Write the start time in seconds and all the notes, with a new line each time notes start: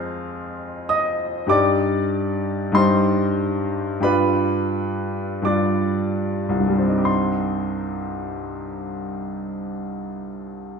Already playing: F2 G#3 C4 C5 F5 F6
0.89 D#5 D#6
1.47 G2 G3 D#4 G4 D6
1.51 D5
2.72 G2 G3 D#4 G4 C5 C6
4.00 G2 G3 D4 F4 B4 B5
5.42 G2 G3 D4 F4 D6
5.46 D5
6.49 C2
6.59 G2
6.68 G3
6.78 C4
6.88 D#4
6.98 G4
7.05 C6